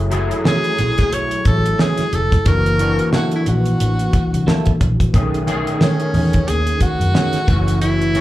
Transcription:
Already playing: F#1 F#3 A3 E4 G#4
0.10 F#3 A3 E4 G#4, closed hi-hat, muted conga
0.31 closed hi-hat
0.44 E3 A3 C#4 G#4, snare, high conga
0.64 closed hi-hat
0.79 B1, closed hi-hat, low conga
0.98 kick, snare, closed hi-hat
1.12 C#5, closed hi-hat, muted conga
1.31 closed hi-hat
1.45 A1 A4, kick, closed hi-hat, muted conga
1.66 closed hi-hat
1.78 E3 A3 C#4 G#4, snare, high conga
1.97 snare, closed hi-hat, high conga
2.13 F1 A4, closed hi-hat, high conga
2.32 kick, closed hi-hat
2.45 F#1 E3 A#3 D4 F#4 A#4, kick, closed hi-hat, muted conga
2.66 closed hi-hat
2.79 E3 A#3 D4 F#4, closed hi-hat, muted conga
2.99 closed hi-hat
3.12 F#3 A#3 E4 F#4 A4, snare, high conga
3.31 closed hi-hat
3.36 E4
3.46 A#1 F#4, closed hi-hat, low conga
3.66 closed hi-hat
3.80 A1, closed hi-hat, muted conga
3.99 closed hi-hat
4.13 kick, closed hi-hat, muted conga
4.33 C2, closed hi-hat
4.47 F#3 A#3 E4 A4, snare, high conga
4.66 kick, closed hi-hat, high conga
4.80 A#1, kick, closed hi-hat, high conga
5.00 kick, closed hi-hat
5.13 B1 D#3 A3 C#4 G#4, kick, closed hi-hat, muted conga
5.34 closed hi-hat
5.47 D#3 A3 C#4 G#4, closed hi-hat, muted conga
5.67 closed hi-hat
5.81 D#3 A3 C#4 G#4, snare, high conga
6.00 closed hi-hat
6.14 E2, open hi-hat, low conga
6.33 kick, closed hi-hat
6.47 D#2 G#4, closed hi-hat, muted conga
6.67 closed hi-hat
6.81 F#4, kick, closed hi-hat, muted conga
7.00 F#2, closed hi-hat
7.14 D#3 A3 C#4 G#4, snare, high conga
7.33 snare, closed hi-hat, high conga
7.47 F#1 E3 A3 C#4 F#4, kick, closed hi-hat, high conga
7.68 closed hi-hat
7.82 E4, closed hi-hat, muted conga
8.02 closed hi-hat
8.14 E3 A3 C#4 F#4, closed hi-hat, muted conga

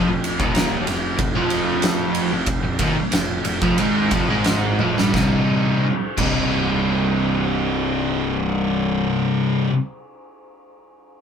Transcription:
0.09 F1 F2
0.24 ride
0.39 D#1 D#2 D#3, kick
0.55 snare, ride
0.87 F1 F2, snare, ride
1.18 F1 F2, kick, ride
1.35 F1 F2 F3
1.50 ride
1.82 snare, ride
2.15 ride
2.32 F1 F2
2.46 kick, ride
2.64 F1 F2
2.79 D#1 D#2 D#3, kick, ride
2.96 muted picked electric bass stroke, muted overdriven electric guitar stroke, muted distorted electric guitar stroke
3.12 F1 F2, snare, ride
3.45 F1 F2, ride
3.62 F1 F2 F3, kick
3.78 G#1 G#2 G#3, ride
4.11 F1 F2 F3, kick, ride
4.30 G#1 G#2 G#3
4.44 snare, ride
4.79 F1 F2 F3, high tom
4.97 G1 G2 G3, snare
5.13 C1 C2 G2 C3 G3 D#4, kick, snare
6.17 C1 C2 G2 C3 G3, kick, crash
6.21 D#4

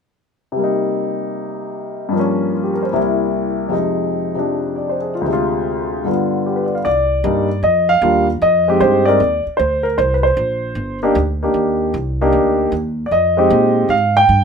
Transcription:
0.52 C3
0.56 G3 A#3
0.63 D#4
2.09 G2 F3
2.15 A#3
2.19 C#4
2.54 F4
2.64 G4
2.74 A#4
2.83 C5
2.93 C2 C3 A#3 E4
3.68 F2 C3 G#3
3.73 D#4
4.35 C3 F3 D4
4.76 D5
4.89 C5
5.01 G#4
5.15 F4
5.21 D2
5.25 C3 G#3
5.33 F4
6.04 G2 D3 B3
6.09 F4
6.46 G4
6.56 B4
6.66 D5
6.75 F5
6.85 C2 D5
7.24 G2 G3 A#3 D4 D#4
7.63 F2 D#5
7.89 F5
8.02 D#2 G3 A#3 D4 F4
8.42 F2 D#5
8.68 G#3 C4 D#4 G4
8.80 G2 C5
9.05 G#3 C4 D#4 A#4 D5
9.20 D#2
9.46 muted upright bass stroke
9.57 D2 C5
9.83 A#4
9.98 C2 C5
10.14 B4
10.23 C5
10.37 A#1
10.75 G1
11.03 A#3 D4 D#4 G4
11.15 D2
11.43 A#3 D4 D#4 G4
11.54 D#2
11.94 C2
12.21 A#3 D4 D#4 G4
12.32 D2
12.72 D#2
13.06 D5
13.11 F2 D#5
13.37 G#3 C4 D#4 G4
13.50 A#2
13.89 G#2 F5
14.17 G5
14.29 G2

